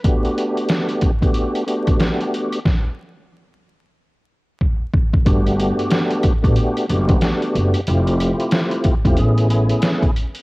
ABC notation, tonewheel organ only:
X:1
M:4/4
L:1/16
Q:"Swing 16ths" 1/4=92
K:G
V:1 name="Tonewheel organ"
[A,B,DFG]6 z [A,B,DFG]3 [A,B,DFG]6 | z16 | [A,B,DFG]6 z [A,B,DFG]3 [A,B,DFG]6 | [A,CE=FG]6 z [A,CEFG] [A,B,^CE^G]2 [A,B,CEG]4 z2 |]